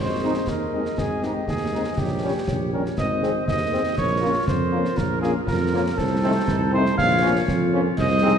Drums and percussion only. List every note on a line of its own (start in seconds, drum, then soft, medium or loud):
0.47 concert bass drum medium
0.47 snare medium
0.85 snare soft
0.98 concert bass drum medium
0.98 snare medium
1.23 snare soft
1.48 concert bass drum medium
1.48 snare medium
1.98 concert bass drum medium
1.98 snare medium
2.48 concert bass drum medium
2.48 snare medium
2.86 snare medium
2.98 concert bass drum medium
2.98 snare medium
3.23 snare soft
3.48 concert bass drum medium
3.48 snare medium
3.98 concert bass drum medium
3.98 snare medium
3.98 crash soft
4.48 concert bass drum medium
4.48 snare medium
4.85 snare medium
4.98 concert bass drum medium
4.98 snare medium
5.23 snare medium
5.47 concert bass drum medium
5.47 snare medium
5.98 concert bass drum medium
5.98 snare medium
6.48 concert bass drum medium
6.48 snare medium
6.85 snare medium
6.98 concert bass drum medium
6.98 snare medium
7.48 concert bass drum medium
7.48 snare medium
7.98 concert bass drum medium
7.98 snare medium
7.98 crash soft